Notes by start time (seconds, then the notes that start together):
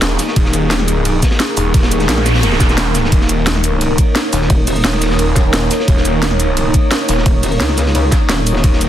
Already playing: D#1 A#3 D#4 G#4 A#4 D#5 C#6
0.02 snare, closed hi-hat, ride
0.10 ride
0.19 snare, open hi-hat, ride, shaker
0.28 snare
0.36 D#1, kick, closed hi-hat, ride
0.45 snare
0.53 closed hi-hat, ride, shaker
0.70 snare, closed hi-hat, ride
0.79 snare, ride
0.88 closed hi-hat, ride, shaker
1.05 closed hi-hat, ride
1.23 kick, snare, closed hi-hat, ride, shaker
1.31 snare, ride
1.39 snare, closed hi-hat, ride
1.57 D#1, open hi-hat, ride, shaker
1.74 D#1, kick, snare, closed hi-hat, ride, noise sweep
1.83 snare, ride
1.92 closed hi-hat, ride, shaker
2.00 snare, ride, shaker
2.09 A#1, snare, closed hi-hat, ride
2.17 snare
2.25 snare, closed hi-hat, ride, shaker
2.34 snare, ride
2.39 C#5, snare, closed hi-hat, ride
2.43 snare, ride
2.51 snare, ride
2.60 D#1, kick, snare, closed hi-hat, ride, shaker
2.69 snare, ride, shaker
2.77 snare, closed hi-hat, ride
2.87 ride
2.95 snare, open hi-hat, ride, shaker
3.05 snare
3.12 D#1 C#5, kick, closed hi-hat, ride
3.18 D#6, snare
3.29 closed hi-hat, ride, shaker
3.47 snare, closed hi-hat, ride
3.55 snare, ride
3.64 closed hi-hat, ride, shaker
3.81 closed hi-hat, ride
3.98 kick, closed hi-hat, ride, shaker
4.15 snare, closed hi-hat, ride
4.33 D#1, snare, open hi-hat, ride, shaker
4.41 snare
4.50 D#1, kick, closed hi-hat, ride
4.67 closed hi-hat, open hi-hat, ride, shaker
4.76 shaker
4.84 D#1, snare, closed hi-hat, ride
4.93 snare
5.02 snare, closed hi-hat, ride, shaker
5.11 snare
5.19 closed hi-hat, ride
5.36 kick, snare, closed hi-hat, ride, shaker
5.53 snare, closed hi-hat, ride
5.62 ride
5.71 snare, open hi-hat, ride, shaker
5.80 snare
5.88 D#1, kick, closed hi-hat, ride
5.97 snare
6.05 closed hi-hat, ride, shaker
6.22 snare, closed hi-hat, ride
6.31 snare, ride
6.40 closed hi-hat, ride, shaker
6.57 closed hi-hat, ride
6.74 kick, closed hi-hat, ride, shaker
6.91 snare, closed hi-hat, ride
7.09 D#1, snare, open hi-hat, ride, shaker
7.18 snare
7.26 D#1, kick, closed hi-hat, ride
7.43 closed hi-hat, open hi-hat, ride, shaker
7.52 shaker
7.60 C#2, snare, closed hi-hat, ride
7.69 snare
7.77 snare, closed hi-hat, ride, shaker
7.86 snare
7.95 closed hi-hat, ride
8.12 kick, snare, closed hi-hat, ride, shaker
8.29 D#1, snare, closed hi-hat, ride
8.38 ride
8.47 open hi-hat, ride, shaker
8.56 snare
8.64 D#1 F#5, kick, closed hi-hat, ride
8.70 A#5, snare
8.81 closed hi-hat, ride, shaker